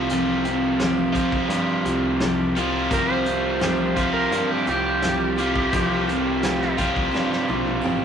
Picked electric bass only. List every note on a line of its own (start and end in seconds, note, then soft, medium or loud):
0.00 1.11 C2 medium
1.49 1.83 G2 medium
1.85 2.87 C2 medium
2.91 4.28 C2 medium
4.32 4.65 G2 medium
4.67 5.69 C2 loud
5.73 7.10 C2 medium
7.15 7.47 G2 medium
7.49 7.81 A#1 medium
7.85 8.05 A1 medium